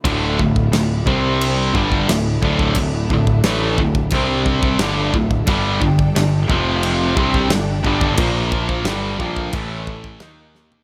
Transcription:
<<
  \new Staff \with { instrumentName = "String section" } { \time 4/4 \key d \minor \tempo 4 = 89 <d a e' f'>4. <c g d' c''>4 <d a d' e'>4.~ | <d a d' e'>2 <c g d' c''>4 <d a e' f'>4 | <g d' a' g''>4. <f c' g' f''>4 <g d' a' g''>4. | <bes f' c'' bes''>4 <g d' a' g''>4 <a e' a' a''>4 <ees bes f' ees''>4 | }
  \new Staff \with { instrumentName = "Distorted electric guitar" } { \clef bass \time 4/4 \key d \minor <d, a, d>8 <d, a,>8 <d, a,>8 <c g c'>4 <g, d g>8 <d, a,>8 <d, a, d>8 | <d, a,>8 <d, a,>8 <a, e a>8 <d, a,>8 <c g c'>4 <g, d g>8 <d, a,>8 | <g, d g>8 <g, d>8 <g, d>8 <f, c f>4 <c g c'>8 <g, d>8 <g, d g>8 | <bes, f bes>4 <g, d g>8 <bes, f bes>8 <a, e a>4 <ees bes ees'>4 | }
  \new Staff \with { instrumentName = "Distorted electric guitar" } { \clef bass \time 4/4 \key d \minor <d, a, d>8 <d, a,>8 <d, a,>8 <c g c'>4 <g, d g>8 <d, a,>8 <d, a, d>8 | <d, a,>8 <d, a,>8 <a, e a>8 <d, a,>8 <c g c'>4 <g, d g>8 <d, a,>8 | <g, d g>8 <g, d>8 <g, d>8 <f, c f>4 <c g c'>8 <g, d>8 <g, d g>8 | <bes, f bes>4 <g, d g>8 <bes, f bes>8 <a, e a>4 <ees bes ees'>4 | }
  \new Staff \with { instrumentName = "Picked electric bass" } { \clef bass \time 4/4 \key d \minor d,,8 d,,8 d,,8 c,4 g,,8 d,,8 d,,8 | d,,8 d,,8 a,,8 d,,8 c,4 g,,8 d,,8 | g,,8 g,,8 g,,8 f,,4 c,8 g,,8 g,,8 | bes,,4 g,,8 bes,,8 a,,4 ees,4 | }
  \new DrumStaff \with { instrumentName = "Drums" } \drummode { \time 4/4 <cymc bd>8 bd16 bd16 <cymc sn>8 bd8 cymc8 bd16 bd16 <cymc sn>8 bd16 bd16 | <cymc bd>8 bd16 bd16 <cymc sn>8 bd16 bd16 <cymc bd>8 bd16 bd16 <cymc sn>8 bd16 bd16 | <cymc bd>8 bd16 bd16 <cymc sn>8 bd8 cymc8 bd16 bd16 <cymc sn>8 bd16 bd16 | <cymc bd>8 bd16 bd16 <cymc sn>8 bd16 bd16 <cymc bd>8 bd16 bd16 <cymc sn>8 sn16 tomfh16 | }
>>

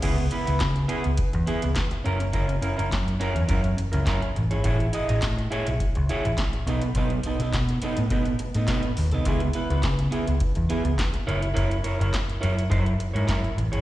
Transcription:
<<
  \new Staff \with { instrumentName = "Clean electric guitar" } { \time 4/4 \key cis \minor \tempo 4 = 104 <b e' gis'>16 r16 <b e' b'>16 <b e' b'>16 r8 <b e' gis'>16 r8. <b e' gis'>16 r8. <cis' e' ais'>16 r16 | <cis' e' ais'>16 r16 <cis' e' ais'>16 <cis' e' ais'>16 r8 <cis' e' ais'>16 r16 <cis' e' ais'>16 r8 <cis' e' ais'>16 <cis' e' ais'>16 r8 <e' gis' cis''>16 | <e' gis' cis''>16 r16 <e' gis' dis''>16 <e' gis' dis''>16 r8 <e' gis' cis''>16 r8. <e' gis' cis''>16 r8. <b dis' a'>16 r16 | <b dis' a'>16 r16 <b dis' a'>16 <b dis' a'>16 r8 <b dis' a'>16 r16 <b dis' a'>16 r8 <b dis' a'>16 <b dis' a'>16 r8 <b dis' a'>16 |
<b e' gis'>16 r16 <b e' b'>16 <b e' b'>16 r8 <b e' gis'>16 r8. <b e' gis'>16 r8. <e' ais' cis''>16 r16 | <e' ais' cis''>16 r16 <e' ais' cis''>16 <e' ais' cis''>16 r8 <e' ais' cis''>16 r16 <e' ais' cis''>16 r8 <e' ais' cis''>16 <e' ais' cis''>16 r8 <e' gis' cis''>16 | }
  \new Staff \with { instrumentName = "Picked electric bass" } { \clef bass \time 4/4 \key cis \minor cis,8 r16 cis,16 cis8 r16 cis,16 r16 e,16 r16 cis,16 r8 fis,,8 | fis,,8 r16 fis,,16 fis,8 r16 e,16 fis,8 r16 cis,16 fis,16 r16 a,,16 gis,,16 | a,,8 r16 a,,16 a,8 r16 b,,16 r16 cis,16 r16 a,,16 r8 b,,8 | b,,8 r16 b,,16 b,8 r16 a,16 b,8 r16 a,16 b,16 r16 dis,16 bis,,16 |
cis,8 r16 cis,16 cis8 r16 cis,16 r16 e,16 r16 cis,16 r8 fis,,8 | fis,,8 r16 fis,,16 r8 fis,8 fis,8 r16 gis,16 fis,16 r16 a,,16 gis,,16 | }
  \new DrumStaff \with { instrumentName = "Drums" } \drummode { \time 4/4 <cymc hh bd>16 hh16 hh16 hh16 <hc hh bd sn>16 hh16 hh16 hh16 <hh bd>16 hh16 hh16 hh16 <hc hh bd sn>16 hh16 hh16 hh16 | <hh bd>16 hh16 hh16 hh16 <hc hh bd sn>16 hh16 hh16 hh16 <hh bd>16 hh16 hh16 hh16 <hc hh bd sn>16 hh16 hh16 hh16 | <hh bd>16 hh16 hh16 hh16 <hc hh bd sn>16 hh16 hh16 hh16 <hh bd>16 hh16 hh16 hh16 <hc hh bd sn>16 hh16 hh16 hh16 | <hh bd>16 hh16 hh16 hh16 <hc hh bd sn>16 hh16 hh16 hh16 <hh bd>16 hh16 hh16 hh16 <hc hh bd sn>16 hh16 hho16 hh16 |
<hh bd>16 hh16 hh16 hh16 <hc hh bd sn>16 hh16 hh16 hh16 <hh bd>16 hh16 hh16 hh16 <hc hh bd sn>16 hh16 hh16 hh16 | <hh bd>16 hh16 hh16 hh16 <hc hh bd sn>16 hh16 hh16 hh16 <hh bd>16 hh16 hh16 hh16 <hc hh bd sn>16 hh16 hh16 hh16 | }
>>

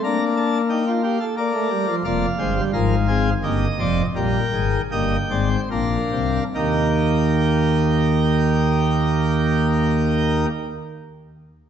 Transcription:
<<
  \new Staff \with { instrumentName = "Pipe organ" } { \time 3/4 \key ees \major \tempo 4 = 76 << { bes''8 a''8 g''8 f''8 d''4 | f''4 f''4 ees''4 | g''4 g''4 f''4 | <bes g' g''>2.~ |
<bes g' g''>2. | } \\ { d'4 ees'16 f'16 g'16 a'16 bes'4 | d''8 c''8 bes'8 aes'8 g'8 d''8 | bes'4 ees''8 d''16 c''16 bes'4 | bes'2.~ |
bes'2. | } >> }
  \new Staff \with { instrumentName = "Pipe organ" } { \clef bass \time 3/4 \key ees \major << { bes2 bes16 a16 g16 f16 | bes8 aes16 g16 f8 c'8 bes8 c'8 | g8 aes8 bes8 c'8 d'4 | ees'2.~ |
ees'2. | } \\ { r2. | <f,, f,>8 <g,, g,>8 <aes,, aes,>4 <g,, g,>8 <f,, f,>8 | <bes,, bes,>8 <aes,, aes,>8 <g,, g,>8 <aes,, aes,>8 <bes,, bes,>8 <c, c>8 | <ees, ees>2.~ |
<ees, ees>2. | } >> }
>>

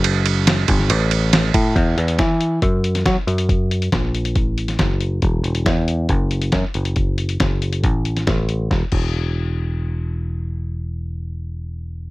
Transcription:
<<
  \new Staff \with { instrumentName = "Picked electric bass" } { \clef bass \time 4/4 \key fis \phrygian \tempo 4 = 138 fis,,4. g,,8 a,,4. a,8 | e,8 e,8 e4 fis,4 fis16 r16 fis,8~ | fis,4 ais,,4 a,,4 fis,,4 | e,,8 e,,8 e,4 fis,,4 fis,16 r16 fis,,8~ |
fis,,4 fis,,4 a,,4 a,,4 | e,,8 e,,2.~ e,,8~ | e,,1 | }
  \new DrumStaff \with { instrumentName = "Drums" } \drummode { \time 4/4 cymr8 cymr8 <cymr sn>8 <bd cymr>16 sn16 cymr8 cymr8 <cymr sn>8 <bd cymr>8 | <hh bd>8 hh16 hh16 <hh bd sn>8 hh8 <hh bd>8 hh16 <hh sn>16 <hh bd sn>8 hh16 hh16 | <hh bd>8 hh16 hh16 <hh bd sn>8 hh16 hh16 <hh bd>8 hh16 <hh sn>16 <hh bd sn>8 hh8 | <hh bd>8 hh16 hh16 <hh bd sn>8 hh8 <hh bd>8 hh16 hh16 <hh bd sn>8 hh16 hh16 |
<hh bd>8 hh16 hh16 <hh bd sn>8 hh16 hh16 <hh bd>8 hh16 <hh sn>16 <hh bd sn>8 hh8 | <bd sn>8 <cymc bd>8 r4 r4 r4 | r4 r4 r4 r4 | }
>>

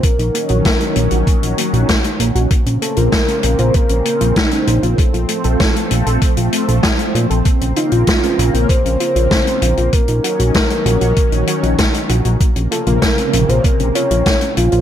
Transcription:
<<
  \new Staff \with { instrumentName = "Soft synth lead" } { \time 4/4 \key bes \minor \tempo 4 = 97 bes'4 bes'2 r4 | r8 a'16 bes'4 c''16 bes'4 ees'8. f'16 | a'2. r4 | r8 ees'16 f'4 bes'16 c''2 |
bes'4 bes'2 r4 | r8 a'16 bes'4 c''16 bes'8 des''4 f'8 | }
  \new Staff \with { instrumentName = "Synth arpeggio sound" } { \time 4/4 \key bes \minor bes16 ees'16 bes16 ges'16 bes16 ees'16 bes16 ges'16 bes16 ees'16 bes16 ges'16 bes16 ees'16 bes16 ges'16 | bes16 des'16 bes16 f'16 bes16 des'16 bes16 f'16 bes16 des'16 bes16 f'16 bes16 des'16 bes16 f'16 | a16 f'16 a16 a'16 a16 f'16 a16 a'16 a16 f'16 a16 a'16 a16 f'16 a16 a'16 | bes16 des'16 f'16 f'16 bes16 des'16 f'16 f'16 bes16 des'16 f'16 f'16 bes16 des'16 f'16 f'16 |
bes16 ees'16 ges'16 ges'16 bes16 ees'16 ges'16 ges'16 bes16 ees'16 ges'16 ges'16 bes16 ees'16 ges'16 ges'16 | bes16 des'16 f'16 f'16 bes16 des'16 f'16 f'16 bes16 des'16 f'16 f'16 bes16 des'16 f'16 f'16 | }
  \new Staff \with { instrumentName = "Analog synth pad" } { \clef bass \time 4/4 \key bes \minor << { des'1 | c'1~ | c'1~ | c'1 |
des'1 | c1 | } \\ { <ees ges>1 | <des bes>1 | <f a>1 | <des bes>1 |
<ees ges>1 | <des bes>1 | } >> }
  \new Staff \with { instrumentName = "Analog synth bass" } { \clef bass \time 4/4 \key bes \minor r16 bes,,16 r16 bes,,16 r8 bes,,16 bes,,16 r16 bes,,16 r16 bes,,16 r8 bes,,16 bes,,16 | r16 bes,,16 r16 bes,,16 r8 bes,,16 bes,,16 r16 bes,,16 r16 bes,,16 r8 bes,,16 bes,,16 | r16 bes,,16 r16 bes,,16 r8 bes,,16 bes,,16 r16 bes,,16 r16 bes,,16 r8 bes,16 bes,,16 | r16 bes,,16 r16 bes,,16 r8 bes,,16 bes,,16 r16 bes,,16 r16 bes,,16 r8 bes,,16 bes,,16 |
r16 bes,,16 r16 bes,,16 r8 bes,,16 bes,,16 r16 bes,,16 r16 bes,,16 r8 bes,,16 bes,,16 | r16 bes,,16 r16 bes,,16 r8 bes,,16 bes,,16 r16 bes,,16 r16 bes,,16 r8 bes,,16 bes,,16 | }
  \new DrumStaff \with { instrumentName = "Drums" } \drummode { \time 4/4 <hh bd>16 hh16 hh16 hh16 <hh bd sn>16 hh16 hh16 hh16 <hh bd>16 hh16 hh16 hh16 <hh bd sn>16 hh16 hh16 hh16 | <hh bd>16 hh16 hh16 hh16 <hh bd sn>16 hh16 hh16 hh16 <hh bd>16 hh16 hh16 hh16 <hh bd sn>16 hh16 hh16 hh16 | <hh bd>16 hh16 hh16 hh16 <hh bd sn>16 hh16 hh16 hh16 <hh bd>16 hh16 hh16 hh16 <hh bd sn>16 hh16 hh16 hh16 | <hh bd>16 hh16 hh16 hh16 <hh bd sn>16 hh16 hh16 hh16 <hh bd>16 hh16 hh16 hh16 <hh bd sn>16 hh16 hh16 hh16 |
<hh bd>16 hh16 hh16 hh16 <hh bd sn>16 hh16 hh16 hh16 <hh bd>16 hh16 hh16 hh16 <hh bd sn>16 hh16 hh16 hh16 | <hh bd>16 hh16 hh16 hh16 <hh bd sn>16 hh16 hh16 hh16 <hh bd>16 hh16 hh16 hh16 <hh bd sn>16 hh16 hh16 hh16 | }
>>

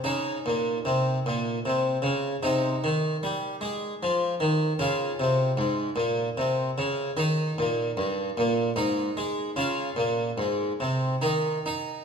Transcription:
<<
  \new Staff \with { instrumentName = "Harpsichord" } { \time 3/4 \key aes \major \tempo 4 = 75 ees'2. | ees'2. | f'2. | ees'2 ees'4 |
f'2 ees'4 | }
  \new Staff \with { instrumentName = "Harpsichord" } { \clef bass \time 3/4 \key aes \major des8 bes,8 c8 bes,8 c8 des8 | c8 ees8 g8 aes8 f8 ees8 | des8 c8 aes,8 bes,8 c8 des8 | ees8 bes,8 g,8 bes,8 aes,8 aes8 |
des8 bes,8 aes,8 c8 ees8 ees'8 | }
>>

